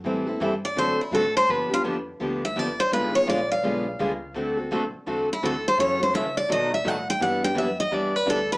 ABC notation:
X:1
M:4/4
L:1/16
Q:"Swing" 1/4=168
K:Dmix
V:1 name="Steel-string acoustic guitar"
z6 d2 c2 E2 A2 c2 | B2 =F2 z6 e2 d2 c2 | B2 ^c2 d2 ^e8- e2 | z8 z2 E2 A2 c2 |
^c2 =c2 e2 d2 ^d2 e2 f2 g2 | f2 g2 e2 _e2 d2 B2 A2 B2 |]
V:2 name="Steel-string acoustic guitar"
[E,G,CEA]2 [CEA]2 [E,G,CEA] z3 [D,A,CFA]2 z2 [D,A,CFA] z3 | [D,=F,B,DG]2 [B,DG]2 [D,F,B,DG] z3 [D,F,B,DG]2 z2 [D,F,B,DG] z3 | [D,^G,B,^E^G]2 [B,EG]2 [D,G,B,EG] z3 [D,G,B,EG]2 z2 [D,G,B,EG] z3 | [D,A,CFA]2 [CFA]2 [D,A,CFA] z3 [D,A,CFA]2 z2 [D,A,CFA] z3 |
[^C,E,A,^CF]2 [A,CF]2 [C,E,A,CF] z3 [B,,F,A,^DF]2 z2 [B,,F,A,DF] z3 | [E,B,DG]2 [B,DG]2 [E,B,DG] z3 [E,B,DG]2 z2 [E,B,DG] z3 |]
V:3 name="Steel-string acoustic guitar"
[E,G,CEA]2 z2 [E,G,CEA] z3 [D,A,CFA]2 z2 [D,A,CFA] z3 | [D,=F,B,DG]2 z2 [D,F,B,DG] z3 [D,F,B,DG]2 z2 [D,F,B,DG] z3 | [D,^G,B,^E^G]2 z2 [D,G,B,EG] z3 [D,G,B,EG]2 z2 [D,G,B,EG] z3 | [D,A,CFA]2 z2 [D,A,CFA] z3 [D,A,CFA]2 z2 [D,A,CFA] z3 |
[F,^CEA]2 z2 [F,CEA] z3 [B,,^D,F,B,^DA]2 z2 [B,,D,F,B,DA] z3 | [E,G,DEB]2 z2 [E,G,DEB] z3 [E,G,DEB]2 z2 [E,G,DEB] z3 |]
V:4 name="Upright bass" clef=bass
A,,4 G,,4 F,,2 z2 A,,4 | G,,2 z2 =F,,4 D,,4 G,,,4 | ^G,,,4 _B,,,4 =B,,,4 ^C,,4 | D,,4 C,,2 z2 E,,4 D,,4 |
F,,4 ^C,4 B,,4 A,,4 | G,,4 F,,4 E,,4 D,,4 |]